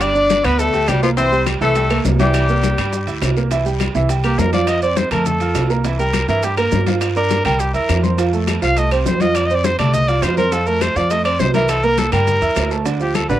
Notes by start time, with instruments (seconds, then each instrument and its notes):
Already playing: upright bass G1, grand piano G3 G4
0.01 tenor saxophone D4, trumpet D5, high bongo, high timbale, long guiro, claves, maracas
0.15 grand piano D4 D5, high conga, maracas
0.30 high bongo, high conga, high timbale, low timbale, short guiro, maracas
0.44 upright bass D2, tenor saxophone B3, grand piano B3 B4, trumpet B4, high bongo, high conga, high timbale, short guiro, claves, maracas
0.59 tenor saxophone A3, trumpet A4, high bongo, high conga, long guiro, maracas
0.74 upright bass D2, grand piano G4 G5, high conga, high timbale, maracas
0.88 upright bass C2, tenor saxophone G3, trumpet G4, high bongo, low bongo, high conga, high timbale, low timbale, short guiro, claves, maracas
1.03 tenor saxophone F3, grand piano A#3 A#4, trumpet F4, short guiro, maracas
1.17 grand piano E3 E4, tenor saxophone C4, trumpet C5, high bongo, high conga, high timbale, long guiro, maracas
1.32 grand piano G3 G4, high conga, maracas
1.46 high bongo, high conga, high timbale, low timbale, short guiro, claves, maracas
1.61 upright bass C2, grand piano E3 E4, tenor saxophone A3, trumpet A4, high bongo, high conga, short guiro, maracas
1.75 grand piano G3 G4, high bongo, high conga, high timbale, long guiro, maracas
1.90 grand piano A#3 A#4, high conga, high timbale, claves, maracas
2.04 upright bass C2, high bongo, low bongo, high conga, low timbale, short guiro, maracas
2.19 grand piano E3 E4, tenor saxophone G3, trumpet G4, high bongo, high conga, high timbale, short guiro, maracas
2.34 high bongo, high conga, high timbale, long guiro, claves, maracas
2.49 grand piano A#3 A#4, high conga, maracas
2.63 high bongo, high conga, high timbale, low timbale, short guiro, maracas
2.78 upright bass G2, grand piano G3 G4, high bongo, high conga, high timbale, short guiro, claves, maracas
2.93 high bongo, high conga, long guiro, maracas
3.07 upright bass D2, grand piano E4 E5, high conga, high timbale, maracas
3.21 upright bass C2, high bongo, low bongo, high conga, high timbale, low timbale, short guiro, claves, maracas
3.37 grand piano A#3 A#4, high bongo, short guiro, maracas
3.51 grand piano E3 E4 E5, high bongo, high conga, high timbale, long guiro, maracas
3.65 grand piano G3 G4 G5, high conga, maracas
3.80 high bongo, high conga, high timbale, low timbale, short guiro, claves, maracas
3.95 upright bass C2, grand piano E3 E4 E5, high bongo, high conga, short guiro, maracas
4.09 grand piano G3 G4 G5, high bongo, high conga, high timbale, long guiro, maracas
4.24 grand piano A#3 A#4 A#5, trumpet G4, high conga, high timbale, claves, maracas
4.38 upright bass F2, trumpet A#4, high bongo, low bongo, high conga, low timbale, short guiro, maracas
4.53 grand piano F3 F4 F5, trumpet D5, high bongo, high conga, high timbale, short guiro, maracas
4.67 trumpet D#5, high bongo, high timbale, long guiro, claves, maracas
4.82 grand piano C4 C5 C6, trumpet D5, high conga, maracas
4.96 trumpet C5, high bongo, high conga, high timbale, low timbale, short guiro, maracas
5.11 upright bass F2, grand piano A3 A4 A5, trumpet A#4, high bongo, high conga, low conga, high timbale, short guiro, claves, maracas
5.26 trumpet A4, high bongo, high conga, low conga, long guiro, maracas
5.40 grand piano F4 F5 F6, high conga, high timbale, maracas
5.55 upright bass C2, high bongo, low bongo, high conga, high timbale, low timbale, short guiro, claves, maracas
5.70 grand piano A#3 A#4 A#5, high bongo, short guiro, maracas
5.84 grand piano E3 E4 E5, high bongo, high conga, high timbale, long guiro, maracas
5.99 grand piano G3 G4 G5, trumpet A#4, high conga, maracas
6.13 high bongo, high conga, high timbale, low timbale, short guiro, claves, maracas
6.28 upright bass G2, grand piano E3 E4 E5, trumpet A#4, high bongo, high conga, short guiro, maracas
6.43 grand piano G3 G4 G5, trumpet G4, high bongo, high conga, high timbale, long guiro, maracas
6.57 grand piano A#3 A#4 A#5, trumpet A#4, high conga, high timbale, claves, maracas
6.72 upright bass G2, high bongo, low bongo, high conga, low timbale, short guiro, maracas
6.87 grand piano F3 F4 F5, high bongo, high conga, high timbale, short guiro, maracas
7.01 high bongo, high timbale, long guiro, claves, maracas
7.16 grand piano D4 D5 D6, trumpet A#4, high conga, maracas
7.30 high bongo, high conga, high timbale, low timbale, short guiro, maracas
7.45 upright bass C2, grand piano G3 G4 G5, trumpet A#4, high conga, low conga, high timbale, short guiro, claves, maracas
7.60 trumpet G4, high bongo, high conga, long guiro, maracas
7.74 upright bass E2, grand piano E4 E5 E6, trumpet A#4, high conga, high timbale, maracas
7.89 upright bass F2, high bongo, low bongo, high conga, high timbale, low timbale, short guiro, claves, maracas
8.03 grand piano C4 C5 C6, high bongo, high conga, short guiro, maracas
8.18 grand piano F3 F4 F5, high bongo, high conga, high timbale, long guiro, maracas
8.33 grand piano A3 A4 A5, high conga, maracas
8.47 high bongo, high conga, high timbale, low timbale, short guiro, claves, maracas
8.62 upright bass C2, grand piano F3 F4 F5, trumpet F5, high bongo, high conga, short guiro, maracas
8.76 grand piano A3 A4 A5, trumpet D#5, high bongo, high conga, high timbale, long guiro, maracas
8.91 grand piano C4 C5 C6, trumpet G4, high conga, high timbale, claves, maracas
9.06 upright bass F2, trumpet C5, high bongo, low bongo, high conga, low timbale, short guiro, maracas
9.20 grand piano F3 F4 F5, trumpet D#5, high bongo, high conga, high timbale, short guiro, maracas
9.35 trumpet D5, high bongo, high conga, high timbale, long guiro, claves, maracas
9.46 trumpet D#5
9.50 grand piano C4 C5 C6, high conga, maracas
9.55 trumpet D5
9.64 trumpet C5, high bongo, high conga, high timbale, low timbale, short guiro, maracas
9.79 upright bass C2, grand piano A3 A4 A5, trumpet D5, high bongo, high conga, low conga, high timbale, short guiro, claves, maracas
9.93 trumpet D#5, high bongo, high conga, low conga, maracas
10.08 grand piano F4 F5 F6, trumpet D5, high conga, high timbale, maracas
10.22 upright bass F2, trumpet C5, high bongo, low bongo, high conga, high timbale, low timbale, short guiro, claves, maracas
10.37 grand piano C4 C5 C6, trumpet A#4, high bongo, high conga, short guiro, maracas
10.52 grand piano F3 F4 F5, trumpet A4, high bongo, high conga, high timbale, long guiro, maracas
10.66 grand piano A3 A4 A5, trumpet A#4, high conga, maracas
10.81 trumpet C5, high bongo, high conga, high timbale, low timbale, short guiro, claves, maracas
10.95 upright bass F2, grand piano F3 F4 F5, trumpet D5, high conga, short guiro, maracas
11.10 grand piano A3 A4 A5, trumpet D#5, high bongo, high conga, high timbale, long guiro, maracas
11.25 grand piano C4 C5 C6, trumpet D5, high conga, high timbale, claves, maracas
11.39 upright bass C2, trumpet C5, high bongo, low bongo, high conga, low timbale, short guiro, maracas
11.54 grand piano E3 E4 E5, trumpet A#4, high bongo, high conga, high timbale, short guiro, maracas
11.69 trumpet A4, high bongo, high conga, high timbale, long guiro, claves, maracas
11.83 grand piano A#3 A#4 A#5, trumpet A#4, high conga, maracas
11.98 trumpet A4, high bongo, high conga, high timbale, low timbale, short guiro, maracas
12.12 upright bass G2, grand piano G3 G4 G5, trumpet A#4, high bongo, high conga, low conga, high timbale, short guiro, claves, maracas
12.27 high bongo, high conga, low conga, long guiro, maracas
12.42 upright bass E2, grand piano E4 E5 E6, high conga, high timbale, maracas
12.56 upright bass D2, high bongo, low bongo, high conga, high timbale, low timbale, short guiro, claves, maracas
12.71 grand piano A3 A4 A5, high bongo, short guiro, maracas
12.86 grand piano D3 D4 D5, high bongo, high conga, high timbale, long guiro, maracas
13.00 grand piano F3 F4 F5, trumpet G4, high conga, maracas
13.15 trumpet A4, high bongo, high conga, high timbale, low timbale, short guiro, claves, maracas
13.29 upright bass A1, grand piano D3 D4 D5, trumpet B4, high bongo, high conga, short guiro, maracas